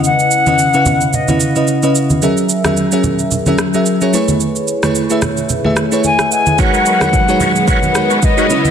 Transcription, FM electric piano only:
Already playing: C#3 C#4 E4 B4 D#5
0.47 C#3 C#4 E4 B4 D#5
0.74 C#3 C#4 E4 B4 F5
0.82 F#5
1.28 C#3 C#4 E4 B4 F#5
1.55 C#3 C#4 E4 B4 D#5
1.83 C#3 C#4 E4 B4 D#5
2.22 F#3 C#4 G#4 A#4 E5
2.65 F#3 C#4 G#4 A#4 E5
2.92 F#3 C#4 G#4 A#4 E5
3.47 F#3 C#4 G#4 A#4 E5
3.74 F#3 C#4 G#4 A#4 E5
4.01 F#3 C#4 G#4 A#4 C#5
4.13 A3 E4 G#4 B4 C#5
4.83 A3 E4 G#4 B4 C#5
5.10 A3 E4 G#4 B4 E5
5.64 A3 E4 G#4 B4 E5
5.92 A3 E4 G#4 B4 C#5
6.05 A4 C#5
6.20 C#5 E5
6.32 D#5 F#5
6.47 E5 G#5
6.59 G#3 D#4 F#4 A#4 B4 C#5
7.01 G#3 D#4 F#4 A#4 B4 C#5
7.28 G#3 D#4 F#4 A#4 B4 C#5
7.95 G#3 D#4 F#4 A#4 B4 C#5
8.37 G#3 D#4 F#4 A#4 B4 D#5
8.50 C#3 C#4 E4 B4 D#5

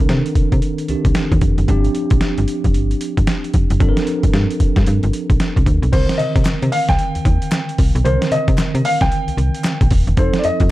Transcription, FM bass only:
0.09 C3
0.35 C3
0.52 C3
0.89 C2
1.05 C2
1.32 D#2
1.42 F1
1.58 F#1
1.69 G1
2.11 A#1
2.38 G1
2.65 F1
2.74 G1
3.18 G1
3.54 F1
3.71 F#1
3.81 G1
4.24 G1
4.34 G2
4.60 G2
4.77 G2
4.87 G2
5.03 G1
5.30 A#1
5.57 C2
5.66 D2
5.82 B1
5.93 C2
6.20 C3
6.36 C3
6.63 C3
6.89 C2
7.16 D#2
7.26 D#2
7.79 C2
7.95 B1
8.05 C2
8.31 C3
8.48 C3
8.75 C3
9.01 C2
9.28 C2
9.37 C2
9.81 A#1
9.91 D#1
10.07 E1
10.17 F1
10.45 F2
10.60 F2

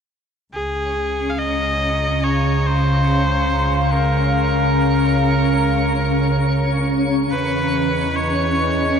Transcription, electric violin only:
0.54 G#4
1.30 F5
1.39 D#5
2.24 C#5
2.67 C5
3.92 A#4
7.31 B4
8.15 C#5

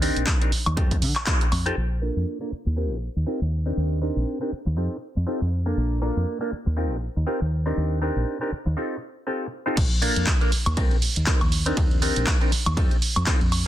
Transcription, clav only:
0.02 C4 D4 D#4 G4 A#4
0.41 C4 D4 D#4 G4 A#4
0.77 C4 D#4 F4 G4 A4
1.27 C4 D#4 F4 G4 A4
1.66 C4 D#4 F4 G4 A4
2.02 A#3 D4 F4 A4 A#4
2.41 A#3 D4 F4 A4 A#4
2.76 C4 D#4 F4 G4 A#4
3.26 C4 D#4 F4 G4 A#4
3.66 C4 D4 D#4 G4 A#4
4.02 C4 D4 D#4 G4 A#4
4.41 C4 D4 D#4 G4 A#4
4.77 C4 D#4 F4 G4 A4
5.27 C4 D#4 F4 G4 A4
5.66 A#3 D4 F4 A4 A#4
6.02 A#3 D4 F4 A4 A#4
6.41 A#3 D4 F4 A4 A#4
6.77 C4 D#4 F4 G4 A#4
7.27 C4 D#4 F4 G4 A#4
7.66 C4 D4 D#4 G4 A#4
8.02 C4 D4 D#4 G4 A#4
8.41 C4 D4 D#4 G4 A#4
8.77 C4 D#4 F4 G4 A4
9.27 C4 D#4 F4 G4 A4
9.66 C4 D#4 F4 G4 A4
10.02 A#3 D4 F4 A4 A#4
10.41 A#3 D4 F4 A4 A#4
10.77 C4 D#4 F4 G4 A#4
11.27 C4 D#4 F4 G4 A#4
11.66 C4 D4 D#4 G4 A#4
12.02 C4 D4 D#4 G4 A#4
12.41 C4 D4 D#4 G4 A#4
12.77 C4 D#4 F4 G4 A4
13.27 C4 D#4 F4 G4 A4

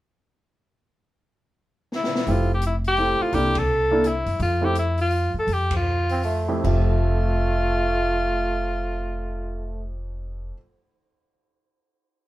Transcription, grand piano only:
2.28 A3 C4 E4 G4
2.98 A3 C4 E4 G4
3.33 A#3 D4 E4 A4
3.91 A#3 D4 E4 A4
4.61 A3 C4 E4 G4
6.48 F2 A3 C4 E4 G4
6.63 F2 F3 A3 G4 E5

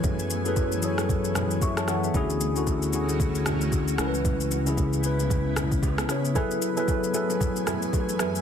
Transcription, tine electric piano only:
Already playing: F#3 E4 G#4 A4 B4 C#5
0.44 F#3 E4 G#4 A4 B4
0.82 F#3 E4 G#4 A4 C#5
1.62 E5 C#6
1.78 C#5 A5
1.89 A4 F#5
2.04 G#4 E5
2.13 D3 C#4 E4 F#4 G#4
2.55 D3 C#4 E4 F#4 A4
2.92 D3 C#4 E4 F#4 G#4
3.97 C#3 C#4 E4 A#4
4.07 B4
4.65 C#3 C#4 E4 G#4
5.03 C#3 C#4 E4 B4
6.08 C#3 C#4 E4 C#5
6.34 F#3 E4 G#4 A4 B4
6.76 F#3 E4 G#4 A4 B4
7.13 F#3 E4 G#4 A4 B4

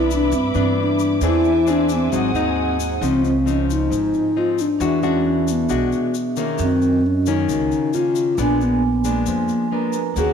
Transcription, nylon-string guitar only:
Already playing: C3 E3 B3 D4
0.32 G2
0.54 E3 B3 D4
1.23 E3 C4 D4 G#4
1.67 C4 D4 G#4
2.12 G#2 F#3 C4 D#4
2.35 F#3 C4 D#4
3.02 C#3 F3 C4 D#4
3.46 F3 C4 D#4
3.91 G#2
4.36 F3 C4 D#4
4.80 E3 G#3 D4 F#4
5.03 G#3 D4 F#4
5.69 B2 G#3 D4 F#4
6.37 D#3 A#3 C#4
6.60 F#2
7.27 D#3 A#3 C#4
7.49 C#3
7.94 D#3 A#3 C#4
8.38 A#2 G#3 B3 D4
9.05 G#3 B3 D4
9.27 F3
9.72 G#3 B3 D4
10.17 D#3 A#3 C#4 F#4

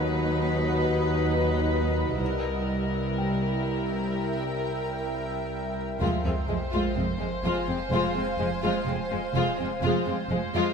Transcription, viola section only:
Already playing: F#3 D#4
2.21 G3 E4
6.01 G#3
6.26 G#3
6.50 G#3
6.74 G#3
6.98 G#3
7.21 G#3
7.44 G#3
7.68 G#3
7.91 G#3
8.16 G#3
8.40 G#3
8.64 G#3
8.88 G#3
9.12 G#3
9.37 G#3
9.61 G#3
9.85 G#3
10.09 G#3
10.32 G#3
10.55 G#3

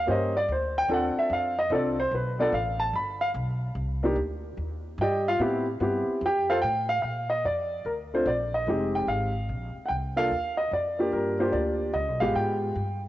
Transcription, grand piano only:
0.06 A#3 C#4 G4 C5
0.11 D#5
0.36 D5
0.52 C5
0.78 G5
0.89 C4 D4 F4 A4
0.93 F#5
1.19 E5
1.33 F5
1.59 D#5
1.71 C4 D4 F4 A4 D5
2.00 C5
2.15 B4
2.39 B3 D4 F4 A4 D5
2.54 F5
2.80 A5
2.95 B5
3.21 F5
4.03 A#3 D4 D#4 G4
5.01 G4 D5 D#5 G5
5.28 F4 F5
5.40 B3 C4 E4 G4
5.80 B3 C4 E4 G4
6.26 G4 G5
6.50 F4 A4 C5 F5
6.62 G5
6.89 F5
7.02 F5
7.30 D#5
7.45 D5
7.86 A#4
8.14 A3 C4 D4 F4 C5
8.27 D5
8.54 D#5
8.68 G#3 C4 D#4 G4
8.95 G5
9.08 F5
9.86 F#5 G5
10.16 A#3 D4 F4 A4 F5
10.57 D#5
10.73 D5
10.99 A#3 D4 F4 G4
11.13 A#4
11.39 A#3 D4 F4 G4 C5
11.52 D5
11.94 D#5
12.20 G#3 B3 F4 G4 F5
12.36 G5

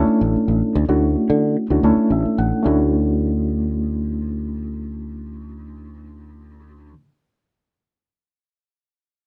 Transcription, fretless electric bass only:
0.08 muted fretless electric bass stroke
0.21 A1
0.36 muted fretless electric bass stroke
0.48 A1
0.75 D2
0.89 D2
1.30 D3
1.70 D2
1.83 D2
1.97 muted fretless electric bass stroke
2.10 A1
2.25 muted fretless electric bass stroke
2.38 A1
2.66 D2

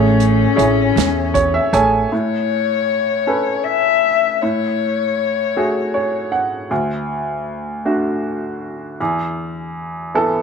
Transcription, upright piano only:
Already playing: A3 G#4 C#5
0.56 E4 G#4 C#5
1.34 C#5
1.54 E5
1.73 G#4 A4 C#5 G#5
2.12 A2
3.27 C#4 A4 B4
4.43 A2
5.56 A3 F#4 G#4
5.94 C#5
6.32 F#5
6.71 D2
7.85 A3 D4 F#4
9.01 E2
10.14 E3 B3 E4 A4

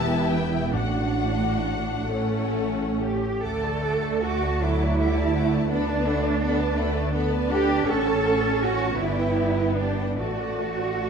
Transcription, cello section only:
Already playing: E2
0.75 A2
2.10 A2
3.01 G4
3.44 A4
4.24 F#4
4.63 E4
5.73 D4
7.52 G4
7.88 A4
8.62 F#4
9.00 E4
9.78 D4
10.19 F#4

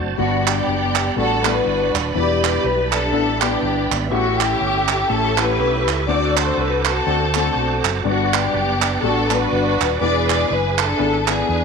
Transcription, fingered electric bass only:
Already playing: F#1
0.18 G1
0.67 F#1
1.17 A1
1.66 G1
1.94 D#1
2.15 E1
2.64 B1
3.13 A1
3.62 G1
3.91 G#1
4.12 A1
4.61 G1
5.10 A1
5.59 B1
5.88 C#2
6.08 D2
6.57 C2
7.06 D2
7.55 B1
7.84 F#1
8.05 G1
8.54 F#1
9.03 A1
9.52 G1
9.81 D#1
10.01 E1
10.50 F#1
11.00 G#1
11.49 E2

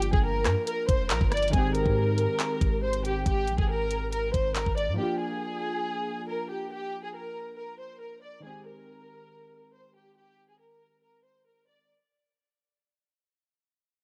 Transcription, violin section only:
Already playing: G4
0.13 G#4
0.24 A#4
0.67 A#4
0.89 C5
1.10 A#4
1.32 D5
1.53 G#4
1.75 A#4
2.83 C5
3.05 G4
3.26 G4
3.59 G#4
3.69 A#4
4.12 A#4
4.34 C5
4.55 A#4
4.77 D5
4.99 G4
5.20 G#4
6.28 A#4
6.50 G4
6.71 G4
7.03 G#4
7.14 A#4
7.58 A#4
7.79 C5
8.01 A#4
8.23 D5
8.44 G#4
8.66 A#4
9.74 C5
9.95 G4
10.17 G4
10.49 G#4
10.60 A#4
11.03 A#4
11.25 C5
11.46 A#4
11.68 D5

